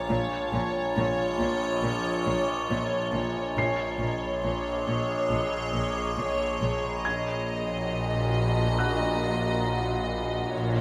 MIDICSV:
0, 0, Header, 1, 7, 480
1, 0, Start_track
1, 0, Tempo, 869565
1, 49, Time_signature, 4, 2, 24, 8
1, 5966, End_track
2, 0, Start_track
2, 0, Title_t, "Felt piano"
2, 0, Program_c, 0, 0
2, 0, Control_c, 0, 64, 127
2, 0, Note_on_c, 0, 96, 42
2, 59, Control_c, 0, 64, 0
2, 162, Control_c, 0, 64, 127
2, 506, Note_off_c, 0, 96, 0
2, 1977, Note_on_c, 0, 96, 34
2, 1980, Control_c, 0, 64, 0
2, 2058, Control_c, 0, 64, 127
2, 3391, Note_off_c, 0, 96, 0
2, 3892, Note_on_c, 0, 92, 33
2, 3898, Control_c, 0, 64, 0
2, 3998, Control_c, 0, 64, 127
2, 4848, Note_on_c, 0, 78, 27
2, 4851, Note_on_c, 0, 90, 33
2, 5308, Note_off_c, 0, 92, 0
2, 5819, Control_c, 0, 64, 0
2, 5915, Control_c, 0, 64, 127
2, 5966, Note_off_c, 0, 78, 0
2, 5966, Note_off_c, 0, 90, 0
2, 5966, End_track
3, 0, Start_track
3, 0, Title_t, "Ambient pad"
3, 0, Program_c, 1, 92
3, 49, Note_on_c, 1, 75, 53
3, 52, Note_on_c, 1, 65, 51
3, 52, Note_on_c, 1, 73, 56
3, 1948, Note_off_c, 1, 65, 0
3, 1948, Note_off_c, 1, 73, 0
3, 1966, Note_off_c, 1, 75, 0
3, 1971, Note_on_c, 1, 73, 47
3, 1972, Note_on_c, 1, 75, 50
3, 1974, Note_on_c, 1, 68, 48
3, 3868, Note_off_c, 1, 73, 0
3, 3869, Note_off_c, 1, 75, 0
3, 3888, Note_on_c, 1, 66, 51
3, 3888, Note_on_c, 1, 78, 48
3, 3892, Note_off_c, 1, 68, 0
3, 3894, Note_on_c, 1, 75, 50
3, 5809, Note_off_c, 1, 66, 0
3, 5809, Note_off_c, 1, 78, 0
3, 5811, Note_off_c, 1, 75, 0
3, 5966, End_track
4, 0, Start_track
4, 0, Title_t, "Violin section"
4, 0, Program_c, 2, 48
4, 51, Note_on_c, 2, 73, 46
4, 282, Note_off_c, 2, 73, 0
4, 289, Note_on_c, 2, 73, 41
4, 524, Note_off_c, 2, 73, 0
4, 530, Note_on_c, 2, 73, 42
4, 765, Note_off_c, 2, 73, 0
4, 776, Note_on_c, 2, 73, 39
4, 1004, Note_off_c, 2, 73, 0
4, 1011, Note_on_c, 2, 73, 43
4, 1245, Note_off_c, 2, 73, 0
4, 1255, Note_on_c, 2, 73, 35
4, 1481, Note_off_c, 2, 73, 0
4, 1488, Note_on_c, 2, 73, 38
4, 1724, Note_off_c, 2, 73, 0
4, 1735, Note_on_c, 2, 73, 34
4, 1968, Note_off_c, 2, 73, 0
4, 1978, Note_on_c, 2, 73, 36
4, 2209, Note_off_c, 2, 73, 0
4, 2218, Note_on_c, 2, 73, 30
4, 2442, Note_off_c, 2, 73, 0
4, 2449, Note_on_c, 2, 73, 30
4, 2684, Note_off_c, 2, 73, 0
4, 2690, Note_on_c, 2, 73, 30
4, 2923, Note_off_c, 2, 73, 0
4, 2930, Note_on_c, 2, 73, 30
4, 3163, Note_off_c, 2, 73, 0
4, 3170, Note_on_c, 2, 73, 27
4, 3398, Note_off_c, 2, 73, 0
4, 3405, Note_on_c, 2, 73, 32
4, 3642, Note_off_c, 2, 73, 0
4, 3650, Note_on_c, 2, 73, 27
4, 3884, Note_on_c, 2, 75, 31
4, 3885, Note_off_c, 2, 73, 0
4, 5784, Note_off_c, 2, 75, 0
4, 5814, Note_on_c, 2, 73, 46
4, 5966, Note_off_c, 2, 73, 0
4, 5966, End_track
5, 0, Start_track
5, 0, Title_t, "Cello section"
5, 0, Program_c, 3, 48
5, 55, Note_on_c, 3, 46, 53
5, 99, Note_off_c, 3, 46, 0
5, 293, Note_on_c, 3, 46, 43
5, 338, Note_off_c, 3, 46, 0
5, 535, Note_on_c, 3, 46, 48
5, 579, Note_off_c, 3, 46, 0
5, 770, Note_on_c, 3, 46, 43
5, 814, Note_off_c, 3, 46, 0
5, 1009, Note_on_c, 3, 46, 46
5, 1053, Note_off_c, 3, 46, 0
5, 1251, Note_on_c, 3, 46, 44
5, 1295, Note_off_c, 3, 46, 0
5, 1494, Note_on_c, 3, 46, 42
5, 1538, Note_off_c, 3, 46, 0
5, 1734, Note_on_c, 3, 46, 35
5, 1778, Note_off_c, 3, 46, 0
5, 1973, Note_on_c, 3, 46, 39
5, 2017, Note_off_c, 3, 46, 0
5, 2210, Note_on_c, 3, 46, 32
5, 2254, Note_off_c, 3, 46, 0
5, 2454, Note_on_c, 3, 46, 34
5, 2498, Note_off_c, 3, 46, 0
5, 2692, Note_on_c, 3, 46, 33
5, 2737, Note_off_c, 3, 46, 0
5, 2933, Note_on_c, 3, 46, 35
5, 2977, Note_off_c, 3, 46, 0
5, 3170, Note_on_c, 3, 46, 32
5, 3214, Note_off_c, 3, 46, 0
5, 3412, Note_on_c, 3, 46, 33
5, 3456, Note_off_c, 3, 46, 0
5, 3651, Note_on_c, 3, 46, 30
5, 3695, Note_off_c, 3, 46, 0
5, 3888, Note_on_c, 3, 46, 36
5, 5787, Note_off_c, 3, 46, 0
5, 5809, Note_on_c, 3, 46, 54
5, 5966, Note_off_c, 3, 46, 0
5, 5966, End_track
6, 0, Start_track
6, 0, Title_t, "Double bass section"
6, 0, Program_c, 4, 48
6, 56, Note_on_c, 4, 34, 48
6, 100, Note_off_c, 4, 34, 0
6, 294, Note_on_c, 4, 34, 44
6, 338, Note_off_c, 4, 34, 0
6, 531, Note_on_c, 4, 34, 45
6, 575, Note_off_c, 4, 34, 0
6, 773, Note_on_c, 4, 34, 44
6, 817, Note_off_c, 4, 34, 0
6, 1009, Note_on_c, 4, 34, 44
6, 1053, Note_off_c, 4, 34, 0
6, 1249, Note_on_c, 4, 34, 42
6, 1294, Note_off_c, 4, 34, 0
6, 1487, Note_on_c, 4, 34, 40
6, 1531, Note_off_c, 4, 34, 0
6, 1729, Note_on_c, 4, 34, 34
6, 1773, Note_off_c, 4, 34, 0
6, 1968, Note_on_c, 4, 34, 38
6, 2012, Note_off_c, 4, 34, 0
6, 2207, Note_on_c, 4, 34, 32
6, 2251, Note_off_c, 4, 34, 0
6, 2447, Note_on_c, 4, 34, 35
6, 2492, Note_off_c, 4, 34, 0
6, 2688, Note_on_c, 4, 34, 35
6, 2732, Note_off_c, 4, 34, 0
6, 2926, Note_on_c, 4, 34, 34
6, 2970, Note_off_c, 4, 34, 0
6, 3167, Note_on_c, 4, 34, 34
6, 3211, Note_off_c, 4, 34, 0
6, 3409, Note_on_c, 4, 34, 32
6, 3454, Note_off_c, 4, 34, 0
6, 3646, Note_on_c, 4, 34, 30
6, 3690, Note_off_c, 4, 34, 0
6, 3889, Note_on_c, 4, 34, 36
6, 5787, Note_off_c, 4, 34, 0
6, 5814, Note_on_c, 4, 34, 50
6, 5966, Note_off_c, 4, 34, 0
6, 5966, End_track
7, 0, Start_track
7, 0, Title_t, "Synth drone"
7, 0, Program_c, 5, 95
7, 49, Note_on_c, 5, 34, 63
7, 1947, Note_off_c, 5, 34, 0
7, 1978, Note_on_c, 5, 34, 55
7, 3871, Note_off_c, 5, 34, 0
7, 3887, Note_on_c, 5, 34, 59
7, 5786, Note_off_c, 5, 34, 0
7, 5818, Note_on_c, 5, 34, 60
7, 5966, Note_off_c, 5, 34, 0
7, 5966, End_track
0, 0, End_of_file